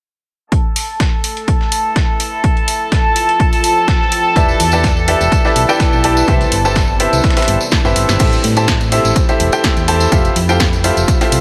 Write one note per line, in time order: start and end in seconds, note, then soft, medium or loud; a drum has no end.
0.52 3.09 A4 medium
0.52 8.21 A4 medium
0.52 8.21 A5 medium
0.52 kick loud
0.52 closed hi-hat medium
0.76 open hi-hat medium
0.76 open hi-hat loud
0.83 3.21 E5 medium
1.00 kick loud
1.00 snare loud
1.00 closed hi-hat medium
1.17 3.21 B5 medium
1.24 closed hi-hat medium
1.24 open hi-hat loud
1.37 closed hi-hat soft
1.48 kick loud
1.48 closed hi-hat medium
1.61 snare soft
1.72 closed hi-hat medium
1.72 open hi-hat loud
1.96 kick loud
1.96 snare loud
1.96 closed hi-hat medium
2.20 closed hi-hat medium
2.20 open hi-hat loud
2.44 4.36 F4 loud
2.44 kick loud
2.44 closed hi-hat medium
2.57 closed hi-hat soft
2.68 closed hi-hat medium
2.68 open hi-hat loud
2.92 kick loud
2.92 snare loud
2.92 closed hi-hat medium
2.96 4.36 C5 medium
3.16 closed hi-hat medium
3.16 open hi-hat loud
3.29 5.13 G5 medium
3.29 closed hi-hat soft
3.40 kick loud
3.40 closed hi-hat medium
3.53 open hi-hat medium
3.64 closed hi-hat medium
3.64 open hi-hat loud
3.88 kick loud
3.88 snare loud
3.88 closed hi-hat medium
4.01 snare soft
4.12 closed hi-hat medium
4.12 open hi-hat loud
4.36 4.54 E1 medium
4.36 4.60 E4 medium
4.36 7.05 E4 medium
4.36 4.60 G4 medium
4.36 4.60 B4 medium
4.36 4.60 D5 medium
4.36 4.60 E5 medium
4.36 kick loud
4.36 closed hi-hat medium
4.36 tambourine medium
4.48 tambourine soft
4.60 5.15 E2 medium
4.60 open hi-hat loud
4.60 open hi-hat medium
4.65 7.05 B4 medium
4.72 4.87 E4 medium
4.72 4.87 G4 medium
4.72 4.87 B4 medium
4.72 4.87 D5 medium
4.72 4.87 A5 medium
4.72 tambourine medium
4.83 kick loud
4.83 snare loud
4.83 closed hi-hat medium
4.83 tambourine medium
4.94 7.05 E5 medium
4.94 tambourine soft
5.08 5.42 E4 medium
5.08 5.42 G4 medium
5.08 5.42 B4 medium
5.08 5.42 D5 medium
5.08 5.42 E5 medium
5.08 closed hi-hat medium
5.08 open hi-hat loud
5.21 5.29 E1 medium
5.21 closed hi-hat soft
5.21 tambourine medium
5.32 kick loud
5.32 closed hi-hat medium
5.32 tambourine medium
5.45 5.66 E4 medium
5.45 5.66 G4 medium
5.45 5.66 B4 medium
5.45 5.66 D5 medium
5.45 5.66 E5 medium
5.45 snare soft
5.45 tambourine soft
5.56 5.65 B1 medium
5.56 closed hi-hat medium
5.56 open hi-hat loud
5.69 6.01 E4 medium
5.69 6.01 G4 medium
5.69 6.01 B4 medium
5.69 6.01 D5 medium
5.69 6.01 G5 loud
5.69 tambourine medium
5.80 kick loud
5.80 snare loud
5.80 closed hi-hat medium
5.80 tambourine medium
5.93 6.23 B1 medium
5.93 tambourine soft
6.04 6.25 E4 medium
6.04 6.25 G4 medium
6.04 6.25 B4 medium
6.04 6.25 D5 medium
6.04 6.25 A5 loud
6.04 closed hi-hat medium
6.04 open hi-hat loud
6.17 tambourine medium
6.28 6.46 C2 loud
6.28 8.97 C4 medium
6.28 6.52 E4 medium
6.28 6.52 G4 medium
6.28 6.52 B4 medium
6.28 6.52 C5 medium
6.28 6.52 E5 loud
6.28 kick loud
6.28 closed hi-hat medium
6.28 tambourine medium
6.41 closed hi-hat soft
6.41 tambourine soft
6.52 7.07 G1 medium
6.52 closed hi-hat medium
6.52 open hi-hat loud
6.65 6.79 E4 medium
6.65 6.79 G4 medium
6.65 6.79 B4 medium
6.65 6.79 C5 medium
6.65 6.79 A5 medium
6.65 tambourine medium
6.75 kick loud
6.75 snare loud
6.75 closed hi-hat medium
6.75 tambourine medium
6.88 8.97 G4 medium
6.88 tambourine soft
7.00 7.34 E4 medium
7.00 7.34 G4 medium
7.00 7.34 B4 medium
7.00 7.34 C5 medium
7.00 7.34 E5 medium
7.00 closed hi-hat medium
7.00 open hi-hat loud
7.13 7.21 C2 medium
7.13 8.97 D5 medium
7.13 closed hi-hat soft
7.13 tambourine medium
7.23 kick loud
7.23 snare medium
7.23 closed hi-hat medium
7.23 tambourine medium
7.30 snare medium
7.30 closed hi-hat medium
7.37 7.58 E4 medium
7.37 7.58 G4 medium
7.37 7.58 B4 medium
7.37 7.58 C5 medium
7.37 7.58 E5 medium
7.37 snare medium
7.37 closed hi-hat medium
7.37 open hi-hat medium
7.37 tambourine soft
7.42 snare medium
7.42 closed hi-hat medium
7.48 7.57 G1 medium
7.48 closed hi-hat medium
7.48 open hi-hat loud
7.61 tambourine medium
7.71 kick loud
7.71 snare loud
7.71 closed hi-hat medium
7.71 tambourine medium
7.85 7.93 G1 medium
7.85 8.17 E4 medium
7.85 8.17 G4 medium
7.85 8.17 B4 medium
7.85 8.17 C5 medium
7.85 8.17 E5 loud
7.85 snare soft
7.85 tambourine soft
7.96 8.05 G1 medium
7.96 closed hi-hat medium
7.96 open hi-hat loud
8.09 8.17 G1 medium
8.09 snare medium
8.09 tambourine medium
8.19 8.38 A1 loud
8.19 8.44 E4 medium
8.19 8.44 G4 medium
8.19 8.44 A4 medium
8.19 10.89 A4 medium
8.19 8.44 C5 medium
8.19 8.44 E5 medium
8.19 kick loud
8.19 closed hi-hat loud
8.19 crash medium
8.19 tambourine medium
8.33 closed hi-hat soft
8.33 tambourine soft
8.44 8.99 A2 medium
8.44 10.89 B5 medium
8.44 open hi-hat loud
8.56 8.71 E4 medium
8.56 8.71 G4 medium
8.56 8.71 A4 medium
8.56 8.71 C5 medium
8.56 8.71 A5 medium
8.56 closed hi-hat soft
8.56 tambourine medium
8.67 10.89 E5 medium
8.67 kick loud
8.67 snare loud
8.67 closed hi-hat medium
8.67 tambourine medium
8.80 closed hi-hat soft
8.80 tambourine soft
8.92 9.26 E4 medium
8.92 9.26 G4 medium
8.92 9.26 A4 medium
8.92 9.26 C5 medium
8.92 9.26 E5 medium
8.92 open hi-hat loud
9.05 9.13 A1 medium
9.05 closed hi-hat soft
9.05 tambourine medium
9.16 kick loud
9.16 closed hi-hat medium
9.16 tambourine medium
9.29 9.50 E4 medium
9.29 9.50 G4 medium
9.29 9.50 A4 medium
9.29 9.50 C5 medium
9.29 9.50 E5 medium
9.29 closed hi-hat soft
9.29 tambourine soft
9.40 9.49 E1 medium
9.40 open hi-hat loud
9.52 9.85 E4 medium
9.52 9.85 G4 medium
9.52 9.85 A4 medium
9.52 9.85 C5 medium
9.52 9.85 G5 loud
9.52 closed hi-hat soft
9.52 tambourine medium
9.64 kick loud
9.64 snare loud
9.64 closed hi-hat medium
9.64 tambourine medium
9.77 10.07 E2 medium
9.77 closed hi-hat soft
9.77 tambourine soft
9.88 10.09 E4 medium
9.88 10.09 G4 medium
9.88 10.09 A4 medium
9.88 10.09 C5 medium
9.88 10.09 A5 loud
9.88 open hi-hat loud
10.00 closed hi-hat soft
10.00 tambourine medium
10.12 10.30 F1 loud
10.12 10.36 F4 medium
10.12 11.41 F4 medium
10.12 10.36 G4 medium
10.12 10.36 A4 medium
10.12 10.36 C5 medium
10.12 10.36 E5 loud
10.12 kick loud
10.12 closed hi-hat medium
10.12 tambourine medium
10.25 closed hi-hat soft
10.25 tambourine soft
10.36 10.91 F2 medium
10.36 open hi-hat loud
10.49 10.63 F4 medium
10.49 10.63 G4 medium
10.49 10.63 A4 medium
10.49 10.63 C5 medium
10.49 10.63 G5 medium
10.49 closed hi-hat soft
10.49 tambourine medium
10.60 kick loud
10.60 snare loud
10.60 closed hi-hat medium
10.60 tambourine medium
10.64 11.41 C5 medium
10.73 closed hi-hat soft
10.73 tambourine soft
10.84 11.18 F4 medium
10.84 11.18 G4 medium
10.84 11.18 A4 medium
10.84 11.18 C5 medium
10.84 11.18 E5 medium
10.84 open hi-hat loud
10.97 11.05 F1 medium
10.97 11.41 G5 medium
10.97 closed hi-hat soft
10.97 tambourine medium
11.08 kick loud
11.08 closed hi-hat medium
11.08 tambourine medium
11.21 11.41 F4 medium
11.21 11.41 G4 medium
11.21 11.41 A4 medium
11.21 11.41 C5 medium
11.21 11.41 E5 medium
11.21 snare soft
11.21 open hi-hat medium
11.21 tambourine soft
11.32 11.41 C2 medium
11.32 open hi-hat loud